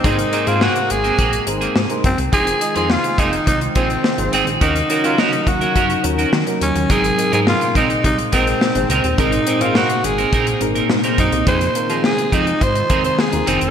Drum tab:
HH |xxxx-xxxxxxx-xxx|xxxx-xxxxxxx-xxx|xxxx-xxxxxxx-xxx|xxxx-xxxxxxx-xxx|
SD |----o-------o---|----o-------o---|----o-------o---|----o-------o---|
BD |o-------o-----o-|o-----o-o-o-----|o-----o-o-------|o-----o-o-o-----|

HH |xxxx-xxxxxxx-xxx|xxxx-xxxxxxx-xxx|
SD |----o-------o---|----o-------o---|
BD |o-------o-----o-|o-----o-o-o-----|